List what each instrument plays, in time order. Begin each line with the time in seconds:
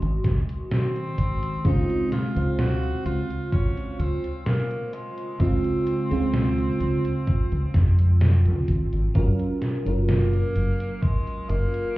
Already playing: fm electric piano C#3 D#3 G#3 F#4, tenor saxophone G#3
0.02 fingered electric bass G#1, closed hi-hat
0.24 fingered electric bass C#2, kick, snare, closed hi-hat
0.49 closed hi-hat
0.71 tenor saxophone C4, snare, closed hi-hat
0.96 closed hi-hat
1.18 fingered electric bass G#1, kick, closed hi-hat
1.43 closed hi-hat
1.64 fingered electric bass C#2, fm electric piano C#3 G#3 C4 F4, tenor saxophone D#4, kick, closed hi-hat
1.90 closed hi-hat
2.12 tenor saxophone F4, snare, closed hi-hat
2.35 fingered electric bass C#2, fm electric piano C#3 G#3 C5 F5, closed hi-hat
2.59 tenor saxophone F#4, snare, closed hi-hat
2.83 closed hi-hat
3.06 fingered electric bass C#2, tenor saxophone F4, closed hi-hat
3.30 closed hi-hat
3.52 tenor saxophone C#4, kick, closed hi-hat
3.77 closed hi-hat
3.99 fingered electric bass C#2, tenor saxophone C4, closed hi-hat
4.24 closed hi-hat
4.46 tenor saxophone A#3, snare, closed hi-hat
4.71 closed hi-hat
4.93 tenor saxophone G#3, closed hi-hat
5.18 closed hi-hat
5.39 fingered electric bass C#2, fm electric piano C#3 G#3 C4 F4, tenor saxophone C4, kick, closed hi-hat
5.64 closed hi-hat
5.87 closed hi-hat
6.10 fingered electric bass C#2, fm electric piano C#3 G#3 C4 F4, closed hi-hat
6.34 snare, closed hi-hat
6.58 closed hi-hat
6.80 fingered electric bass C#2, closed hi-hat
7.05 closed hi-hat
7.27 kick, closed hi-hat
7.52 fingered electric bass C#2, closed hi-hat
7.74 fingered electric bass F2, kick, snare, closed hi-hat
7.99 closed hi-hat
8.21 snare, closed hi-hat
8.46 fingered electric bass C#2, closed hi-hat
8.68 fingered electric bass G#1, kick, closed hi-hat
8.93 fingered electric bass G#1, closed hi-hat
9.14 fingered electric bass F#1, fm electric piano F#3 C#4 F4 A#4, kick, closed hi-hat
9.39 closed hi-hat
9.62 snare, closed hi-hat
9.85 fingered electric bass F#1, fm electric piano F#3 C#4 F4 A#4, closed hi-hat
10.09 tenor saxophone A#3, snare, closed hi-hat
10.33 closed hi-hat
10.56 fingered electric bass F#1, closed hi-hat
10.80 closed hi-hat
11.03 tenor saxophone G#3, kick, closed hi-hat
11.27 closed hi-hat
11.49 fingered electric bass F#1, tenor saxophone A#3, closed hi-hat
11.74 closed hi-hat